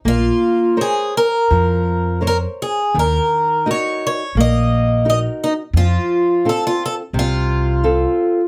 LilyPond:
<<
  \new Staff \with { instrumentName = "Twelve-string acoustic guitar" } { \time 4/4 \key bes \minor \tempo 4 = 85 f'4 aes'8 bes'4. bes'8 aes'8 | bes'4 des''8 des''8 ees''4 ees''8 ees'8 | f'4 a'16 f'16 a'8 f'2 | }
  \new Staff \with { instrumentName = "Nylon-string guitar" } { \time 4/4 \key bes \minor bes4 <bes' c'' des''>4 f4 <bes' c'' des''>4 | ees4 <ees' ges' bes'>4 bes4 <ees' ges' bes'>4 | f4 <c' f' a'>4 c4 <c' f' a'>4 | }
  \new Staff \with { instrumentName = "Upright bass" } { \clef bass \time 4/4 \key bes \minor bes,,8 r4. f,2 | ees,8 r4. bes,,2 | f,8 r4. c,2 | }
>>